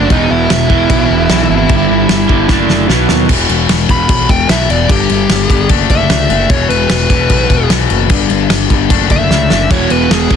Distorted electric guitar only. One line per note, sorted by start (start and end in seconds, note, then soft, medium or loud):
0.00 0.10 D3 medium
0.10 0.69 E2 medium
0.10 0.69 B2 loud
0.10 0.69 E3 loud
0.70 1.28 E2 medium
0.70 1.29 B2 medium
0.70 1.28 E3 loud
1.29 1.68 E2 medium
1.29 1.69 B2 medium
1.29 1.69 E3 loud
1.69 2.28 G2 loud
1.69 2.29 D3 loud
1.69 2.28 G3 loud
2.29 2.49 G2 medium
2.29 2.46 D3 medium
2.29 2.48 G3 medium
2.48 2.87 D3 loud
2.48 2.88 A3 medium
2.48 2.89 D4 loud
2.88 3.27 B2 medium
2.88 3.28 F#3 loud
2.88 3.29 B3 loud
3.28 3.88 E2 medium
3.28 3.88 B2 loud
3.28 3.87 E3 loud
3.89 4.46 E2 medium
3.89 4.48 B2 medium
3.89 4.48 E3 loud
4.48 4.87 E2 medium
4.48 4.88 B2 medium
4.48 4.89 E3 medium
4.88 5.48 G2 loud
4.88 5.49 D3 loud
4.88 5.48 G3 medium
5.49 5.69 G2 medium
5.49 5.68 D3 medium
5.49 5.68 G3 loud
5.69 6.28 D3 loud
5.69 6.29 A3 loud
5.69 6.28 D4 loud
6.29 6.50 D3 medium
6.29 6.49 A3 medium
6.29 6.49 D4 medium
6.49 7.09 E2 medium
6.49 7.09 B2 medium
6.49 7.08 E3 loud
7.10 7.69 E2 medium
7.10 7.69 B2 medium
7.10 7.69 E3 medium
7.70 8.09 E2 medium
7.70 8.10 B2 medium
7.70 8.10 E3 medium
8.09 8.69 G2 medium
8.09 8.70 D3 loud
8.09 8.69 G3 loud
8.70 8.90 G2 medium
8.70 8.88 D3 medium
8.70 8.89 G3 medium
8.89 9.49 D3 medium
8.89 9.50 A3 medium
8.89 9.49 D4 loud
9.50 9.70 D3 medium
9.50 9.70 A3 medium
9.50 9.69 D4 medium
9.70 10.29 E2 medium
9.70 10.30 B2 medium
9.70 10.29 E3 loud
10.31 10.36 E2 medium
10.31 10.36 B2 medium
10.31 10.36 E3 medium